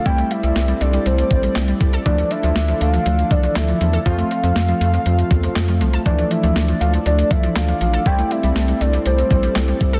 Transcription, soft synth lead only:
\new Staff \with { instrumentName = "Soft synth lead" } { \time 4/4 \key d \minor \tempo 4 = 120 g''8 e''4 d''8 c''4. r8 | d''8 e''4 f''4 d''8 e''4 | f''2.~ f''8 r8 | d''8 e''4 f''8 d''8 e''8 f''4 |
g''8 e''4 d''8 c''4. r8 | }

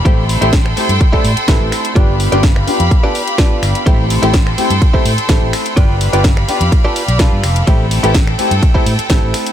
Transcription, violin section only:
\new Staff \with { instrumentName = "Violin section" } { \time 4/4 \key a \minor \tempo 4 = 126 <a' g'' c'''>1 | <g' f'' b''>1 | <a' g'' c'''>1 | <g' f'' b''>1 |
<a' g''>1 | }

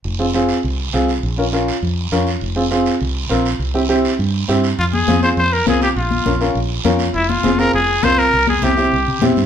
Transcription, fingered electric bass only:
\new Staff \with { instrumentName = "Fingered electric bass" } { \clef bass \time 4/4 \key f \minor \tempo 4 = 203 f,,2 c,4 c,4 | bes,,2 f,4 f,4 | f,,2 c,4 bes,,4 | c,2 g,4 g,4 |
f,4 f,4 f,4 c,4 | bes,,4 bes,,4 bes,,4 f,4 | f,,4 f,,4 f,,4 c,4 | c,4 c,4 c,8 c8 bes,8 g,8 | }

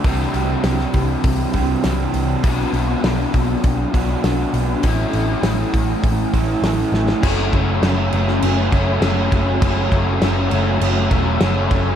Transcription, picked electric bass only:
\new Staff \with { instrumentName = "Picked electric bass" } { \clef bass \time 4/4 \key fis \phrygian \tempo 4 = 100 c,8 c,8 c,8 c,8 c,8 c,8 c,8 c,8 | b,,8 b,,8 b,,8 b,,8 b,,8 b,,8 b,,8 b,,8 | a,,8 a,,8 a,,8 a,,8 a,,8 a,,8 a,,8 a,,8 | fis,,8 fis,,8 fis,,8 fis,,8 fis,,8 fis,,8 fis,,8 fis,,8 |
fis,,8 fis,,8 fis,,8 fis,,8 fis,,8 e,,8 fis,,8 fis,,8 | }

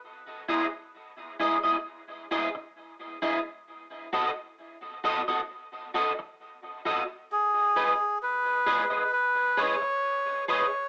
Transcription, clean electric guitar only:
\new Staff \with { instrumentName = "Clean electric guitar" } { \time 4/4 \key e \major \tempo 4 = 66 r8 <e' gis' dis''>16 r8. <e' gis' dis''>16 <e' gis' dis''>16 r8 <e' gis' dis''>16 r8. <e' gis' dis''>16 r16 | r8 <fis' a' dis''>16 r8. <fis' a' dis''>16 <fis' a' dis''>16 r8 <fis' a' dis''>16 r8. <fis' a' dis''>16 r16 | r8 <gis' b' dis''>16 r8. <gis' b' dis''>16 <gis' b' dis''>16 r8 <gis' b' dis''>16 r8. <gis' b' dis''>16 r16 | }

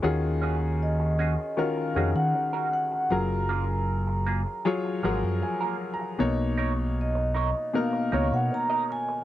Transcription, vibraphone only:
\new Staff \with { instrumentName = "Vibraphone" } { \time 4/4 \key ees \minor \tempo 4 = 78 r4 ees''4 f''8. ges''8. ges''8 | bes''2 r2 | r4 dis''4 f''8. fis''16 ais''8 aes''8 | }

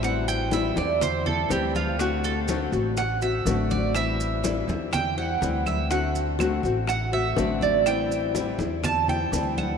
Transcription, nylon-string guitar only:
\new Staff \with { instrumentName = "Nylon-string guitar" } { \time 4/4 \key a \dorian \tempo 4 = 123 <e g c' e'>4 <e g c' e'>8 <g c' e'>8 r8 <g c' e'>8 <e g c' e'>4 | <d a c' fis'>4 <d a c' fis'>8 <a c' fis'>8 r8 <a c' fis'>8 <d a c' fis'>4 | <e g c' e'>4 <e g c' e'>8 <g c' e'>8 r8 <g c' e'>8 <e g c' e'>4 | <d a c' fis'>4 <d a c' fis'>8 <a c' fis'>8 r8 <a c' fis'>8 <d a c' fis'>4 |
<e g c' e'>4 <e g c' e'>8 <g c' e'>8 r8 <g c' e'>8 <e g c' e'>4 | }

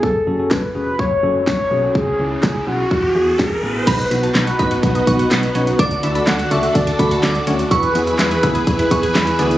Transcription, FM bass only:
\new Staff \with { instrumentName = "FM bass" } { \clef bass \time 4/4 \key b \dorian \tempo 4 = 125 fis,,8 fis,,8 fis,,8 e,,8 fis,,8 fis,,8 fis,,8 b,,8 | cis,8 cis,8 cis,8 b,,8 e,8 e,8 e,8 a,,8 | b,,8 b,,8 b,,8 a,,8 b,,8 b,,8 b,,8 b,,8 | d,8 d,8 d,8 cis,8 d,8 d,8 d,8 d,8 |
e,8 e,8 e,8 d,8 e,8 e,8 e,8 d,8 | }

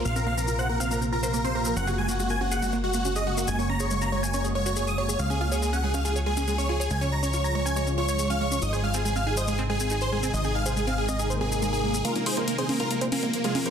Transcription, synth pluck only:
\new Staff \with { instrumentName = "Synth pluck" } { \time 4/4 \key bes \minor \tempo 4 = 140 bes16 c'16 bes16 c'16 f'16 c''16 bes16 c'16 bes16 c'16 f'16 c''16 bes16 c'16 bes16 c'16 | des'16 aes'16 aes16 bes16 aes16 bes16 des'16 aes'16 aes16 bes16 aes16 bes16 des'16 aes'16 aes16 bes16 | aes16 bes16 des'16 aes'16 aes16 bes16 aes16 bes16 des'16 aes'16 aes16 ges'16 aes'16 aes'16 aes'16 aes'16 | aes16 des'16 f'16 des''16 aes16 des'16 aes16 des'16 f'16 des''16 aes16 des'16 aes16 des'16 f'16 des''16 |
aes16 des'16 aes16 des'16 f'16 des''16 aes16 des'16 aes16 des'16 f'16 des''16 aes16 des'16 aes16 des'16 | ees'16 c''16 aes16 c'16 aes16 c'16 ees'16 c''16 aes16 c'16 aes16 c'16 ees'16 c''16 aes16 c'16 | aes16 c'16 ees'16 c''16 aes16 c'16 aes16 c'16 ees'16 c''16 c'16 ees'16 aes16 aes'16 aes16 aes16 | bes16 c'16 f'16 c''16 bes16 c'16 bes16 c'16 f'16 c''16 bes16 c'16 bes16 c'16 f'16 c''16 | }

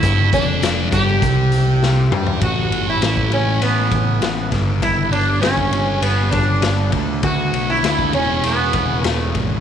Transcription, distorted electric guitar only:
\new Staff \with { instrumentName = "Distorted electric guitar" } { \clef bass \time 4/4 \key g \major \tempo 4 = 100 g,8 f,4 g,8 c4. g8 | <a, e a>2.~ <a, e a>8 <g, d g>8~ | <g, d g>2.~ <g, d g>8 <d a d'>8~ | <d a d'>4. <e, b, e>2~ <e, b, e>8 | }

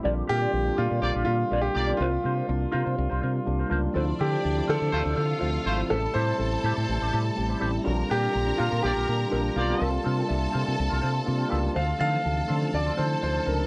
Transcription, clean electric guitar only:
\new Staff \with { instrumentName = "Clean electric guitar" } { \time 4/4 \key d \minor \tempo 4 = 123 <g' bes' d''>8 <g' bes' e''>16 <g' bes' d''>16 r8 <g' bes' d''>16 <g' bes' d''>16 r16 <g' bes' d''>16 <g' bes' d''>16 r16 <g' bes' d''>8 r16 <g' bes' d''>16 | <f' bes' c''>8 <f' bes' c''>16 <f' bes' c''>16 r8 <f' bes' c''>16 <f' bes' c''>16 r16 <f' bes' c''>16 <f' bes' c''>16 r8 <f' bes' c''>16 <f' bes' c''>8 | <f' a' c''>8 <f' a' d''>16 <f' a' c''>16 r8 <f' a' c''>16 <f' a' c''>16 r16 <f' a' c''>16 <f' a' c''>16 r16 <f' a' c''>8 r16 <f' a' c''>16 | <e' g' c''>8 <e' g' c''>16 <e' g' c''>16 r8 <e' g' c''>16 <e' g' c''>16 r16 <e' g' c''>16 <e' g' c''>16 r8 <e' g' c''>16 <e' g' c''>8 |
<d' g' bes'>8 <d' g' c''>16 <d' bes'>16 r8 <d' g' bes'>16 <d' g' bes'>16 r16 <d' g' bes'>16 <d' g' bes'>16 r16 <d' g' bes'>8 r16 <d' g' bes'>16 | <c' f' bes'>8 <c' f' bes'>16 <c' f' bes'>16 r8 <c' f' bes'>16 <c' f' bes'>16 r16 <c' f' bes'>16 <c' f' bes'>16 r8 <c' f' bes'>16 <c' f' bes'>8 | <f' a' c''>8 <f' a' d''>16 <f' a' c''>16 r8 <f' a' c''>16 <f' a' c''>16 r16 <f' a' c''>16 <f' a' c''>16 r16 <f' a' c''>8 r16 <f' a' c''>16 | }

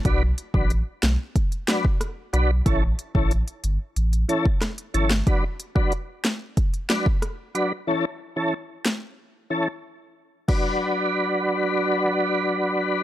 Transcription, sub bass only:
\new Staff \with { instrumentName = "Sub bass" } { \clef bass \time 4/4 \key b \minor \tempo 4 = 92 b,,8 r16 a,,8 r16 b,,16 r4. r16 b,,8 | a,,8 r16 a,,8 r16 g,,16 r16 a,,8 r4 g,,8 | r1 | r1 |
r1 | }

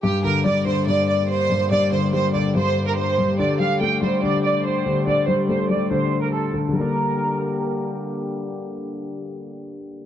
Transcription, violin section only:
\new Staff \with { instrumentName = "Violin section" } { \time 4/4 \key g \minor \tempo 4 = 143 g'8 bes'8 d''8 c''8 d''8 d''8 c''4 | d''8 c''8 c''8 d''8 c''8. bes'16 c''4 | d''8 f''8 g''8 c''8 d''8 d''8 c''4 | d''8 c''8 c''8 d''8 c''8. bes'16 a'8 r8 |
bes'2. r4 | r1 | }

